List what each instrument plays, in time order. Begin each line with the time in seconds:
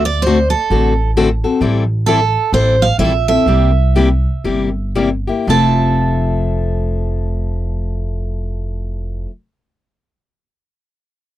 Already playing: upright bass D2
0.05 steel-string acoustic guitar D5
0.22 steel-string acoustic guitar D3 C5
0.26 steel-string acoustic guitar A3 C4 F#4 A4
0.50 steel-string acoustic guitar A4
0.70 upright bass A1, steel-string acoustic guitar D3 A3 C4 F#4 A4
1.17 steel-string acoustic guitar D3 A3 C4 F#4 A4
1.44 steel-string acoustic guitar C4 F#4 A4
1.61 upright bass A1, steel-string acoustic guitar E3 G3 C4 E4 A4
2.06 steel-string acoustic guitar E3 G3 C4 E4 A4
2.53 upright bass A1, steel-string acoustic guitar E3 G3 C4 E4 A4 C5
2.82 steel-string acoustic guitar F5
2.98 upright bass A#1, steel-string acoustic guitar E3 G3 C4 E4 A4 E5
3.28 steel-string acoustic guitar C4 E4 A4 E5
3.46 upright bass C2, steel-string acoustic guitar C3 G3 A#3 E4 G4
3.95 steel-string acoustic guitar C3 G3 A#3 E4 G4
4.44 upright bass G1, steel-string acoustic guitar C3 G3 A#3 E4 G4
4.95 steel-string acoustic guitar C3 G3 A#3 E4 G4
5.27 steel-string acoustic guitar A#3 E4 G4
5.47 upright bass F1, steel-string acoustic guitar F3 A3 C4 E4 A4 A5